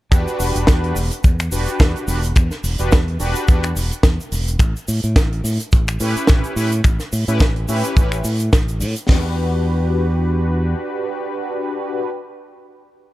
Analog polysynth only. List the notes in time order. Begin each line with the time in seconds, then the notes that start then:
0.11 D4 F#4 G4 B4
1.51 D4 F#4 G4 B4
2.07 D4 F#4 G4 B4
2.79 D4 F#4 G4 B4
3.20 D4 F#4 G4 B4
3.48 D4 F#4 G4 B4
6.00 C#4 E4 G4 B4
6.56 C#4 E4 G4 B4
7.28 C#4 E4 G4 B4
7.68 C#4 E4 G4 B4
7.96 C#4 E4 G4 B4
9.07 D4 F#4 G4 B4